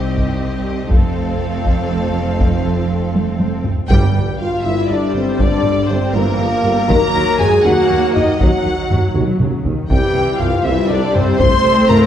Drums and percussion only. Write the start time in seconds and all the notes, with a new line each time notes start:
0.16 taiko
0.91 taiko
1.66 taiko
2.40 taiko
3.15 taiko high
3.40 taiko high
3.65 taiko low
3.90 taiko
5.40 taiko
6.90 taiko
7.41 taiko low-mid
8.16 taiko low-mid
8.40 taiko
8.91 taiko low-mid
9.15 taiko mid
9.40 taiko mid
9.65 taiko low
9.90 taiko
10.40 taiko low-mid
11.15 taiko low-mid
11.40 taiko
11.90 taiko low-mid